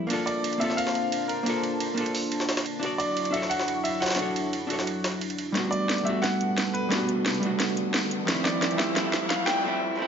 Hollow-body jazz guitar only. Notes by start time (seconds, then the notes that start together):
0.07 A#3 D4
0.12 F4 A4
0.58 A#3 C4 D4
0.63 F4 A4
1.43 A#3 D4
1.48 F4 A4
1.94 A#3 D4
1.99 F4 A4
2.79 D4 F#4
2.86 D5
3.31 D4 F#4
3.35 A4 C#5
4.16 D4 F#4
4.21 A4 C#5
4.67 D4 F#4
4.72 A4 C#5
5.52 G3 A3 B3
5.57 D4 F#4
6.03 G3 A3 B3
6.08 D4 F#4
6.89 G3 A3 B3
6.93 D4 F#4
7.40 G3 A3 B3
7.45 D4 F#4
8.25 F3 G3 A3
8.30 C4 E4
8.76 F3 G3 A3
8.81 C4 E4
8.93 F3 G3 A3
8.98 C4 E4
9.44 F3 A3
9.49 C4 E4
9.61 F3 A3
9.66 C4 E4
9.95 F3 A3
10.00 C4 E4